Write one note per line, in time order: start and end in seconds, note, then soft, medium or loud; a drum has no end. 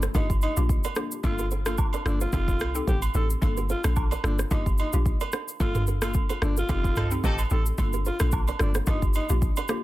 0.02 0.10 A4 medium
0.02 0.09 C5 medium
0.02 cross-stick medium
0.02 shaker medium
0.14 0.47 G1 loud
0.14 0.53 A#3 loud
0.14 0.53 D4 medium
0.14 0.28 D#4 medium
0.14 0.53 F4 medium
0.14 0.54 G4 loud
0.14 0.24 G4 medium
0.14 0.24 A#4 medium
0.14 kick loud
0.14 high agogo medium
0.14 shaker medium
0.30 kick loud
0.30 shaker medium
0.41 0.55 D#4 medium
0.41 high agogo medium
0.41 shaker medium
0.57 0.78 A#1 medium
0.57 0.77 A#3 medium
0.57 0.77 D4 medium
0.57 0.77 F4 medium
0.57 0.77 G4 medium
0.57 shaker loud
0.69 kick medium
0.69 shaker medium
0.84 0.92 A#4 medium
0.84 0.91 D5 medium
0.84 high agogo medium
0.84 shaker medium
0.95 1.17 A#3 medium
0.95 1.18 D4 medium
0.95 1.18 F4 medium
0.95 1.18 G4 medium
0.95 1.05 A4 medium
0.95 1.05 C5 medium
0.95 cross-stick loud
0.95 shaker medium
1.12 shaker medium
1.23 1.90 G1 loud
1.23 1.45 A#3 medium
1.23 1.45 D4 medium
1.23 1.45 F4 medium
1.23 1.48 F4 medium
1.23 1.45 A4 loud
1.23 kick loud
1.23 high agogo medium
1.23 shaker medium
1.39 1.46 G4 medium
1.39 1.46 A#4 medium
1.39 shaker medium
1.51 1.60 A4 medium
1.51 1.59 C5 medium
1.51 shaker medium
1.66 1.86 A#3 medium
1.66 1.86 D4 medium
1.66 1.86 F4 medium
1.66 1.77 F4 medium
1.66 1.86 A4 medium
1.66 cross-stick loud
1.66 high agogo medium
1.66 shaker loud
1.78 kick medium
1.78 low woodblock medium
1.78 shaker medium
1.93 2.01 A#4 medium
1.93 2.00 D5 medium
1.93 high agogo medium
1.93 shaker medium
2.06 2.27 G1 medium
2.06 2.27 A#3 medium
2.06 2.27 D4 medium
2.06 2.19 D4 medium
2.06 2.27 F4 medium
2.06 2.27 A4 medium
2.06 cross-stick loud
2.06 shaker medium
2.21 2.31 F4 medium
2.21 2.28 A4 medium
2.21 2.28 C5 medium
2.21 shaker medium
2.33 2.62 F1 loud
2.33 2.71 C4 medium
2.33 2.72 D#4 medium
2.33 2.73 F4 loud
2.33 2.42 F4 medium
2.33 2.72 G4 medium
2.33 2.72 A4 loud
2.33 2.42 A4 medium
2.33 kick loud
2.33 high agogo medium
2.33 shaker medium
2.48 kick loud
2.48 shaker medium
2.60 2.81 C2 loud
2.60 cross-stick loud
2.60 high agogo medium
2.60 shaker medium
2.75 2.95 C4 medium
2.75 2.95 D#4 medium
2.75 2.95 G4 medium
2.75 2.95 A4 medium
2.75 shaker medium
2.88 3.08 A1 medium
2.88 3.01 G4 medium
2.88 2.97 A4 medium
2.88 2.96 C5 medium
2.88 kick medium
2.88 shaker medium
3.02 high agogo medium
3.02 shaker medium
3.14 3.36 A1 loud
3.14 3.36 C4 medium
3.14 3.36 D#4 medium
3.14 3.36 G4 medium
3.14 3.36 A4 medium
3.14 3.28 A4 medium
3.14 shaker medium
3.30 shaker medium
3.42 3.75 G1 loud
3.42 3.63 A#3 medium
3.42 3.63 D4 medium
3.42 3.63 F4 medium
3.42 3.63 A4 loud
3.42 kick loud
3.42 high agogo medium
3.42 shaker medium
3.57 3.64 G4 medium
3.57 3.64 A#4 medium
3.57 shaker medium
3.69 3.83 F4 medium
3.69 3.78 A4 medium
3.69 3.78 C5 medium
3.69 shaker medium
3.84 4.15 A#1 loud
3.84 4.04 A#3 medium
3.84 4.04 D4 medium
3.84 4.04 F4 medium
3.84 4.04 A4 medium
3.84 cross-stick loud
3.84 high agogo medium
3.84 shaker loud
3.96 kick medium
3.96 low woodblock medium
3.96 shaker medium
4.11 4.19 A#4 medium
4.11 4.18 D5 medium
4.11 high agogo medium
4.11 shaker medium
4.24 4.45 G1 loud
4.24 4.45 A#3 medium
4.24 4.45 D4 medium
4.24 4.37 D4 medium
4.24 4.45 F4 medium
4.24 4.45 A4 medium
4.24 cross-stick loud
4.24 shaker medium
4.39 4.46 A4 medium
4.39 4.45 C5 medium
4.39 cross-stick medium
4.39 shaker medium
4.51 4.84 G1 loud
4.51 4.90 A#3 medium
4.51 4.90 D4 medium
4.51 4.65 D#4 medium
4.51 4.90 F4 medium
4.51 4.90 G4 loud
4.51 4.60 G4 medium
4.51 4.60 A#4 medium
4.51 kick loud
4.51 high agogo medium
4.51 shaker medium
4.66 kick loud
4.66 shaker medium
4.78 4.92 D#4 medium
4.78 high agogo medium
4.78 shaker medium
4.93 5.14 A#1 medium
4.93 5.13 A#3 medium
4.93 5.13 D4 medium
4.93 5.13 F4 medium
4.93 5.13 G4 medium
4.93 shaker loud
5.06 kick medium
5.06 shaker medium
5.20 5.28 A#4 medium
5.20 5.27 D5 medium
5.20 high agogo medium
5.20 shaker medium
5.32 5.42 A4 medium
5.32 5.41 C5 medium
5.32 cross-stick loud
5.32 shaker medium
5.48 shaker medium
5.60 6.26 G1 loud
5.60 5.81 A#3 loud
5.60 5.81 D4 medium
5.60 5.81 F4 medium
5.60 5.84 F4 medium
5.60 5.81 A4 loud
5.60 kick loud
5.60 high agogo medium
5.60 shaker medium
5.75 5.82 G4 medium
5.75 5.82 A#4 medium
5.75 mid tom loud
5.75 shaker medium
5.87 5.96 G4 medium
5.87 5.96 A#4 medium
5.87 shaker medium
6.02 6.22 A#3 medium
6.02 6.22 D4 medium
6.02 6.22 F4 medium
6.02 6.14 F4 medium
6.02 6.22 A4 medium
6.02 cross-stick loud
6.02 high agogo medium
6.02 shaker loud
6.14 kick medium
6.14 shaker medium
6.29 6.37 A4 medium
6.29 6.36 C5 medium
6.29 high agogo medium
6.29 shaker medium
6.42 6.63 G1 medium
6.42 6.63 A#3 medium
6.42 6.63 D4 medium
6.42 6.55 D4 medium
6.42 6.63 F4 medium
6.42 6.63 A4 medium
6.42 cross-stick loud
6.42 shaker medium
6.57 6.68 F4 medium
6.57 6.64 G4 medium
6.57 6.64 A#4 medium
6.57 shaker medium
6.69 6.98 F1 loud
6.69 7.08 C4 medium
6.69 7.08 D#4 medium
6.69 7.10 F4 loud
6.69 6.79 F4 medium
6.69 7.08 G4 medium
6.69 7.08 A4 loud
6.69 6.78 A4 medium
6.69 kick loud
6.69 high agogo medium
6.69 shaker medium
6.84 kick loud
6.84 shaker medium
6.96 7.18 C2 medium
6.96 7.09 F3 medium
6.96 7.09 D#4 medium
6.96 7.09 A4 medium
6.96 cross-stick loud
6.96 mid tom loud
6.96 high agogo medium
6.96 shaker medium
7.11 7.31 C4 medium
7.11 7.31 D#4 medium
7.11 7.31 G4 medium
7.11 7.31 A4 medium
7.11 shaker loud
7.24 7.45 A1 medium
7.24 7.41 F3 loud
7.24 7.41 D#4 loud
7.24 7.37 G4 medium
7.24 7.41 A4 loud
7.24 7.33 A4 medium
7.24 7.32 C5 medium
7.24 kick medium
7.24 low woodblock medium
7.24 shaker medium
7.38 high agogo medium
7.38 shaker medium
7.50 7.72 A1 medium
7.50 7.72 C4 medium
7.50 7.72 D#4 medium
7.50 7.72 G4 medium
7.50 7.72 A4 medium
7.50 7.65 A4 medium
7.50 shaker medium
7.66 shaker medium
7.78 8.11 G1 loud
7.78 7.99 A#3 medium
7.78 7.99 D4 medium
7.78 7.99 F4 medium
7.78 8.00 A4 loud
7.78 kick loud
7.78 high agogo medium
7.78 shaker medium
7.93 8.01 G4 medium
7.93 8.00 A#4 medium
7.93 shaker medium
8.05 8.19 F4 medium
8.05 8.15 A4 medium
8.05 8.14 C5 medium
8.05 shaker medium
8.20 8.51 A#1 medium
8.20 8.40 A#3 medium
8.20 8.40 D4 medium
8.20 8.40 F4 medium
8.20 8.41 A4 medium
8.20 cross-stick loud
8.20 high agogo medium
8.20 shaker loud
8.32 kick medium
8.32 low woodblock medium
8.32 shaker medium
8.48 8.55 A#4 medium
8.48 8.55 D5 medium
8.48 high agogo medium
8.48 shaker medium
8.59 8.81 G1 medium
8.59 8.81 A#3 medium
8.59 8.81 D4 medium
8.59 8.74 D4 medium
8.59 8.81 F4 medium
8.59 8.81 A4 medium
8.59 cross-stick loud
8.59 shaker medium
8.75 8.83 A4 medium
8.75 8.82 C5 medium
8.75 cross-stick medium
8.75 shaker medium
8.87 9.20 G1 loud
8.87 9.26 A#3 medium
8.87 9.26 D4 medium
8.87 9.01 D#4 medium
8.87 9.26 F4 medium
8.87 9.26 G4 loud
8.87 8.97 G4 medium
8.87 8.96 A#4 medium
8.87 kick loud
8.87 high agogo medium
8.87 shaker medium
9.02 kick medium
9.02 shaker medium
9.14 9.28 D#4 medium
9.14 high agogo medium
9.14 shaker medium
9.29 9.51 A#1 medium
9.29 9.49 A#3 medium
9.29 9.49 D4 medium
9.29 9.49 F4 medium
9.29 9.50 G4 medium
9.29 shaker loud
9.42 kick medium
9.42 shaker medium
9.56 9.64 A#4 medium
9.56 9.64 D5 medium
9.56 high agogo medium
9.56 shaker medium
9.68 9.84 A#3 medium
9.68 9.84 D4 medium
9.68 9.84 F4 medium
9.68 9.84 G4 medium
9.68 9.78 A4 medium
9.68 9.78 C5 medium
9.68 cross-stick loud
9.68 shaker medium